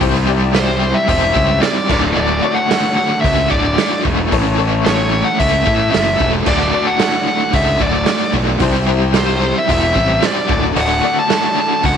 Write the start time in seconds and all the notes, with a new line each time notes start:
0.00 C2 C3 G3 C4 E4 G4 C5, kick, open hi-hat
0.15 snare
0.27 C4 E4 G4 C5 D5
0.53 C3 G3 C4 E4 G4 C5, snare, open hi-hat
0.79 C4 E4 G4 C5
0.94 E5
1.07 E1 C4 E4 G4 C5 E5, kick, open hi-hat
1.34 C#2 C3 G3 C4 E4 G4 C5, kick
1.60 C4 E4 G4 C5 D5, snare, open hi-hat
1.88 D1 D2 A2 D3 A3 F#4 A4 D5, kick, snare, crash
2.14 D1 D2 A2 D3 A3 F#4 D5
2.42 D3 A3 F#4 A4 C#5
2.55 F#5
2.68 D2 A2 D3 A3 F#4, snare, open hi-hat
2.95 D3 A3 F#4 F#5
3.21 C#2 A2 D3 E5, kick, open hi-hat
3.25 A3 F#4
3.48 D1 D2 A2 D3 A3 F#4 D5, kick
3.77 A2 D3 A3 F#4, snare, open hi-hat
4.05 E1 D3 A3 F#4, kick
4.31 A1 A2 E3 A3 C#4 E4 A4 C#5, kick, open hi-hat
4.56 A3 C#4 E4 A4 C#5
4.84 A2 E3 A3 C#4 E4 A4 C#5, snare, open hi-hat
5.11 A3 C#4 E4 A4
5.24 F#5
5.39 C#2 A3 C#4 E4 A4 E5, kick, open hi-hat
5.65 A2 E3 A3 C#4 E4 A4, kick
5.91 F#1 A3 C#4 E4 A4 E5, snare, open hi-hat
6.14 B3 C4
6.18 E1 A3 C#4 D4 E4 A4, kick
6.24 F4 G4
6.29 A4 B4
6.34 C5 D5
6.41 E5 F5
6.45 D1 D2 A2 D3 A3 D4 F#4 A4 D5, kick, crash
6.60 snare
6.72 D3 A3 F#4 A4 D5
6.87 F#5
7.00 D2 A2 D3 A3 F#4, snare, open hi-hat
7.26 D3 A3 F#4 F#5
7.52 C#2 A2 D3 A3 F#4 E5, kick, open hi-hat
7.80 D1 D2 A2 D3 A3 F#4 D5, kick
8.06 A2 D3 A3 F#4, snare, open hi-hat
8.34 B1 D3 A3 F#4, kick
8.60 C2 C3 G3 C4 E4 G4 C5 E5, kick, open hi-hat
8.87 C4 E4 G4 C5
9.12 C3 G3 C4 E4 G4 C5, snare, open hi-hat
9.17 C5
9.40 C4 E4 G4 C5
9.58 E5
9.67 E1 C4 E4 G4 C5, kick, open hi-hat
9.72 E5
9.94 A1 C3 G3 C4 E4 G4 C5, kick
10.21 C4 E4 G4 C5, snare, open hi-hat
10.26 D5
10.47 D1 D2 A2 D3 A3 D4 F#4 A4 D5, kick
10.75 D1 D2 A2 D3 A3 F#4, open hi-hat
10.80 F#5
11.01 D3 A3 F#4 A4 D5
11.19 A5
11.28 D2 A2 D3 A3 F#4, snare, open hi-hat
11.54 D3 A3 F#4
11.60 A5
11.83 C#2 A2 D3 A3 F#4 F#5, kick, open hi-hat